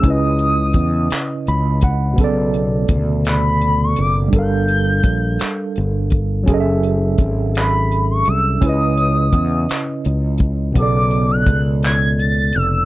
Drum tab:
HH |xxxxxx|xxxxxx|xxxxxx|xxxxxx|
CP |---x--|---x--|---x--|---x--|
BD |o-o--o|o-o---|o-o--o|o-o---|

HH |xxxxxx|xxxxxx|
CP |---x--|---x--|
BD |o-o--o|o-o---|